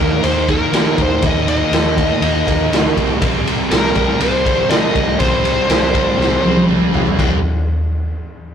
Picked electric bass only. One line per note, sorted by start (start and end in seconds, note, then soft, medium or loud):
0.00 0.18 D#2 loud
0.23 0.62 D#2 loud
0.72 0.91 D#3 medium
0.98 1.17 D#2 medium
1.23 1.61 D#2 medium
1.71 2.10 D#2 medium
2.21 2.41 D#2 loud
2.47 2.66 D#2 medium
2.70 2.90 D2 medium
2.97 3.16 C2 medium
3.22 3.41 C2 loud
3.44 3.64 C2 medium
3.69 3.89 C2 medium
3.96 4.15 C2 medium
4.19 4.58 C2 loud
4.69 4.89 C3 medium
4.96 5.15 C2 medium
5.20 5.58 C2 loud
5.69 6.07 C2 medium
6.18 6.38 C2 loud
6.43 6.62 C2 medium
6.68 6.87 C2 medium
6.92 7.12 C2 medium
7.18 7.41 C2 loud